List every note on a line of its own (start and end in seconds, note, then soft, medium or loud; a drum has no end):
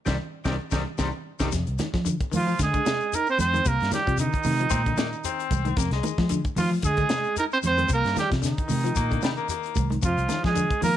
0.05 0.16 C2 medium
0.05 0.14 C3 medium
0.05 0.14 D#3 medium
0.05 0.14 G3 medium
0.05 0.14 C4 medium
0.05 0.14 D#4 medium
0.05 0.14 G4 medium
0.05 kick medium
0.05 snare medium
0.05 low conga medium
0.05 shekere medium
0.44 0.57 C2 medium
0.44 0.55 C3 medium
0.44 0.55 D#3 medium
0.44 0.55 G3 medium
0.44 0.55 C4 medium
0.44 0.55 D#4 medium
0.44 0.54 G4 medium
0.44 kick medium
0.44 snare medium
0.44 low conga medium
0.44 shekere medium
0.71 0.83 C2 medium
0.71 0.81 C3 medium
0.71 0.81 D#3 medium
0.71 0.82 G3 medium
0.71 0.82 C4 medium
0.71 0.82 D#4 medium
0.71 0.82 G4 medium
0.71 kick medium
0.71 snare medium
0.71 low conga loud
0.71 shekere medium
0.98 1.10 C2 medium
0.98 1.08 C3 medium
0.98 1.08 D#3 medium
0.98 1.08 G3 medium
0.98 1.09 C4 medium
0.98 1.09 D#4 medium
0.98 1.09 G4 medium
0.98 kick medium
0.98 snare medium
0.98 low conga medium
0.98 shekere medium
1.40 1.50 C2 medium
1.40 1.48 C3 medium
1.40 1.48 D#3 medium
1.40 1.48 G3 medium
1.40 1.48 C4 medium
1.40 1.48 D#4 medium
1.40 1.48 G4 medium
1.40 kick medium
1.40 snare medium
1.40 low conga medium
1.40 shekere medium
1.52 1.64 F2 medium
1.52 1.67 C3 medium
1.52 kick medium
1.52 snare soft
1.52 closed hi-hat medium
1.52 shekere medium
1.67 1.76 C2 medium
1.67 closed hi-hat soft
1.67 shekere soft
1.79 1.87 D#3 medium
1.79 snare soft
1.79 closed hi-hat medium
1.79 high conga medium
1.79 low conga medium
1.79 shekere medium
1.94 2.00 F3 medium
1.94 2.14 F3 medium
1.94 kick medium
1.94 snare soft
1.94 shekere soft
2.05 2.20 D3 medium
2.05 closed hi-hat medium
2.05 low conga medium
2.05 shekere medium
2.21 muted fingered electric bass stroke soft
2.21 kick medium
2.21 closed hi-hat soft
2.21 shekere soft
2.31 2.40 D#3 medium
2.31 2.53 F3 medium
2.31 open hi-hat medium
2.31 high conga medium
2.31 low conga medium
2.31 shekere medium
2.36 2.59 F3 medium
2.36 2.59 F4 medium
2.47 2.62 F3 medium
2.47 shekere soft
2.59 2.79 D3 medium
2.59 3.17 G#3 medium
2.59 3.16 G#4 loud
2.59 kick medium
2.59 snare soft
2.59 closed hi-hat medium
2.59 high conga medium
2.59 shekere medium
2.73 2.80 D3 medium
2.73 kick medium
2.73 closed hi-hat soft
2.73 shekere soft
2.85 3.00 C3 medium
2.85 snare medium
2.85 closed hi-hat medium
2.85 high conga loud
2.85 shekere medium
3.00 shekere soft
3.13 3.28 D#4 medium
3.13 3.28 A#4 loud
3.13 closed hi-hat medium
3.13 shekere medium
3.27 3.39 C4 medium
3.27 3.40 C5 loud
3.27 shekere soft
3.39 3.59 F2 loud
3.39 3.68 C4 medium
3.39 3.69 C5 loud
3.39 closed hi-hat medium
3.39 high conga medium
3.39 low conga medium
3.39 shekere medium
3.54 3.60 D#3 medium
3.54 closed hi-hat soft
3.54 high conga medium
3.54 shekere soft
3.65 3.77 C2 medium
3.65 3.80 C3 loud
3.65 3.93 A#3 medium
3.65 3.93 A#4 loud
3.65 kick medium
3.65 closed hi-hat medium
3.65 shekere medium
3.80 3.90 G2 medium
3.80 snare soft
3.80 closed hi-hat soft
3.80 shekere soft
3.91 4.00 D#3 medium
3.91 4.17 G3 medium
3.91 4.17 G4 medium
3.91 snare soft
3.91 closed hi-hat medium
3.91 high conga medium
3.91 low conga medium
3.91 shekere medium
4.06 4.27 C3 loud
4.06 4.13 F3 medium
4.06 kick medium
4.06 closed hi-hat soft
4.06 shekere soft
4.17 4.34 D3 medium
4.17 5.48 D#3 medium
4.17 5.48 D#4 medium
4.17 closed hi-hat medium
4.17 shekere medium
4.33 kick medium
4.33 closed hi-hat soft
4.33 shekere soft
4.43 4.65 C3 loud
4.43 4.53 D#3 medium
4.43 open hi-hat medium
4.43 high conga medium
4.43 low conga medium
4.43 shekere medium
4.59 4.75 F3 medium
4.59 closed hi-hat soft
4.59 shekere soft
4.70 4.92 A#2 medium
4.70 4.83 C4 loud
4.70 kick medium
4.70 closed hi-hat medium
4.70 high conga medium
4.70 shekere medium
4.86 4.93 D3 medium
4.86 kick medium
4.86 closed hi-hat soft
4.86 shekere soft
4.97 5.13 A#2 medium
4.97 5.09 A#3 medium
4.97 snare medium
4.97 closed hi-hat medium
4.97 high conga loud
4.97 shekere medium
5.13 shekere soft
5.24 5.79 C4 loud
5.24 closed hi-hat medium
5.24 shekere medium
5.39 closed hi-hat soft
5.39 shekere soft
5.51 5.71 C2 loud
5.51 kick medium
5.51 closed hi-hat medium
5.51 high conga medium
5.51 low conga medium
5.51 shekere medium
5.65 5.72 D#3 medium
5.65 closed hi-hat soft
5.65 high conga medium
5.65 shekere soft
5.77 5.89 F2 medium
5.77 5.92 C3 medium
5.77 5.92 A#3 loud
5.77 kick medium
5.77 snare soft
5.77 closed hi-hat medium
5.77 shekere medium
5.91 6.00 C2 medium
5.91 6.42 G#3 medium
5.91 snare soft
5.91 closed hi-hat soft
5.91 shekere soft
6.03 6.12 D#3 medium
6.03 closed hi-hat medium
6.03 high conga loud
6.03 shekere medium
6.18 6.25 F3 medium
6.18 6.39 F3 medium
6.18 kick medium
6.18 snare soft
6.18 high conga medium
6.18 shekere soft
6.29 6.45 D3 medium
6.29 closed hi-hat medium
6.29 shekere medium
6.45 kick medium
6.45 closed hi-hat soft
6.45 shekere soft
6.56 6.65 D#3 medium
6.56 6.77 F3 medium
6.56 6.71 F3 medium
6.56 6.70 F4 medium
6.56 open hi-hat medium
6.56 high conga medium
6.56 low conga medium
6.56 shekere medium
6.71 6.86 F3 medium
6.71 shekere soft
6.82 7.03 D3 medium
6.82 7.34 G#4 loud
6.82 kick medium
6.82 closed hi-hat medium
6.82 shekere medium
6.87 7.35 G#3 medium
6.97 7.04 D3 medium
6.97 kick medium
6.97 closed hi-hat soft
6.97 shekere soft
7.09 7.24 C3 medium
7.09 snare medium
7.09 closed hi-hat medium
7.09 high conga medium
7.09 shekere medium
7.24 shekere soft
7.37 7.45 D#4 medium
7.37 7.45 A#4 loud
7.37 closed hi-hat medium
7.37 shekere medium
7.51 7.58 C4 medium
7.51 7.58 C5 loud
7.51 shekere soft
7.62 7.84 F2 medium
7.62 7.89 C5 loud
7.62 closed hi-hat medium
7.62 high conga medium
7.62 low conga medium
7.62 shekere medium
7.67 7.90 C4 medium
7.77 7.84 D#3 medium
7.77 closed hi-hat soft
7.77 high conga medium
7.77 shekere soft
7.88 8.01 C2 loud
7.88 8.04 C3 medium
7.88 kick medium
7.88 closed hi-hat medium
7.88 shekere medium
7.93 8.17 A#3 medium
7.93 8.16 A#4 loud
8.04 8.14 G2 medium
8.04 snare soft
8.04 closed hi-hat soft
8.04 shekere soft
8.15 8.23 D#3 medium
8.15 8.30 G4 medium
8.15 closed hi-hat medium
8.15 high conga medium
8.15 low conga medium
8.15 shekere medium
8.19 8.32 G3 medium
8.19 snare soft
8.30 8.52 C3 loud
8.30 8.37 F3 medium
8.30 kick medium
8.30 snare soft
8.30 closed hi-hat soft
8.30 shekere soft
8.42 8.57 D3 medium
8.42 9.73 D#4 medium
8.42 snare soft
8.42 closed hi-hat medium
8.42 shekere medium
8.47 9.74 D#3 medium
8.58 kick medium
8.58 closed hi-hat soft
8.58 shekere soft
8.68 8.90 C3 medium
8.68 8.77 D#3 medium
8.68 open hi-hat medium
8.68 high conga medium
8.68 low conga medium
8.68 shekere medium
8.84 8.99 F3 medium
8.84 closed hi-hat soft
8.84 shekere soft
8.95 9.17 A#2 medium
8.95 9.21 A#3 loud
8.95 kick medium
8.95 closed hi-hat medium
8.95 shekere medium
9.10 9.17 D3 medium
9.10 kick medium
9.10 closed hi-hat soft
9.10 shekere soft
9.22 9.38 C3 medium
9.22 9.30 G3 medium
9.22 snare medium
9.22 closed hi-hat medium
9.22 high conga medium
9.22 shekere medium
9.37 9.48 A#3 medium
9.37 shekere soft
9.49 9.88 A#3 medium
9.49 closed hi-hat medium
9.49 shekere medium
9.63 closed hi-hat soft
9.63 shekere soft
9.75 9.97 C2 medium
9.75 kick medium
9.75 closed hi-hat soft
9.75 high conga medium
9.75 low conga medium
9.75 shekere medium
9.90 9.97 D#3 medium
9.90 closed hi-hat soft
9.90 high conga medium
9.90 shekere soft
10.02 10.14 F2 medium
10.02 10.18 C3 medium
10.02 10.43 F3 medium
10.02 10.42 F4 medium
10.02 kick medium
10.02 closed hi-hat medium
10.02 shekere medium
10.17 10.27 C2 medium
10.17 closed hi-hat soft
10.17 shekere soft
10.29 10.37 D#3 medium
10.29 snare soft
10.29 closed hi-hat medium
10.29 high conga loud
10.29 shekere medium
10.43 10.50 F3 medium
10.43 10.65 F3 loud
10.43 10.81 G#3 medium
10.43 10.81 G#4 medium
10.43 kick medium
10.43 snare soft
10.43 shekere soft
10.54 10.70 D3 medium
10.54 closed hi-hat medium
10.54 shekere medium
10.71 muted fingered electric bass stroke soft
10.71 kick medium
10.71 closed hi-hat soft
10.71 shekere soft
10.81 10.90 D#3 medium
10.81 10.97 F3 medium
10.81 10.97 A#3 medium
10.81 10.97 A#4 loud
10.81 open hi-hat medium
10.81 high conga medium
10.81 low conga medium
10.81 shekere medium